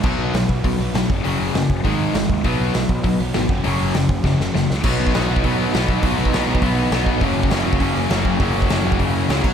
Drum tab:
CC |x---------------|----------------|----------------|----------------|
HH |----o---o---o---|o---o---o---o---|o---o---o---o---|o---o-----------|
SD |----o-------o---|----o-------o---|----o-------o---|----o---o-o-o-o-|
BD |o-----o-o-----o-|------o-o-----o-|o-----o-o-----o-|------o-o-------|

CC |x---------------|----------------|----------------|--------------x-|
HH |----o---o---o---|o---o---o---o---|o---o---o---o---|o---o---o---o---|
SD |----o-------o---|----o-------o---|----o-------o---|----o-------o---|
BD |o--o---oo-----o-|o--o---oo-----o-|o--o---oo-----o-|o--o---oo-----o-|